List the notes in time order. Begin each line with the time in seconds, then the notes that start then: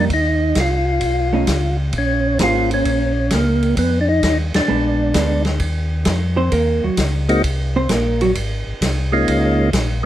0.10 D#2 D#4, kick, ride
0.55 C2, kick, snare, hi-hat pedal, ride
0.60 F4
1.01 B1, kick, ride
1.33 A3 C#4 D#4
1.47 C#2, kick, snare, hi-hat pedal, ride
1.93 A#1, kick, ride
1.98 C#4
2.39 G#1 A#3 C#4 G#4 C5, kick, snare, hi-hat pedal, ride
2.43 F4
2.71 C#4, ride
2.85 A#1, kick, ride
3.30 C#2, kick, snare, hi-hat pedal, ride
3.35 A#3
3.63 ride
3.77 F2 B3, kick, ride
4.01 D4
4.09 D#4
4.23 D#2 D#4, kick, snare, hi-hat pedal, ride
4.54 D#2 D4, snare, ride
4.68 A#1 G#3 B3 D4
5.14 D2 G#3 B3 D4, kick, snare, hi-hat pedal, ride
5.45 snare, ride
5.60 D#2, kick, ride
6.05 F2, kick, snare, hi-hat pedal, ride
6.37 C4 C5
6.52 D#2 A#3 A#4, kick, ride
6.84 D#2 F#3 F#4
6.97 C#2, kick, snare, hi-hat pedal, ride
7.29 G#3 A#3 C4 D#4 F#4, ride
7.43 C2, kick, ride
7.76 C4 C5
7.89 A#1 A#3 A#4, kick, snare, hi-hat pedal, ride
8.21 F#3 F#4, ride
8.35 G#1, kick, ride
8.67 G#1
8.81 C2, kick, snare, hi-hat pedal, ride
9.12 G#3 A#3 C#4 D#4 F4
9.27 C#2, kick, ride
9.73 A#1, kick, snare, hi-hat pedal, ride